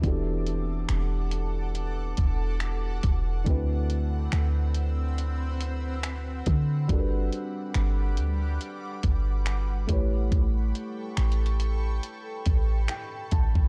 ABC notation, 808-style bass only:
X:1
M:4/4
L:1/16
Q:"Swing 16ths" 1/4=70
K:Edor
V:1 name="808-style bass" clef=bass
E,,,4 E,,,6 E,,,4 E,,,2 | D,,4 D,,8- D,,2 D,2 | G,,,2 z2 G,,,2 D,,2 z2 G,,,4 A,,,2 | A,,,2 z2 A,,,4 z2 A,,,2 z2 A,,, A,,, |]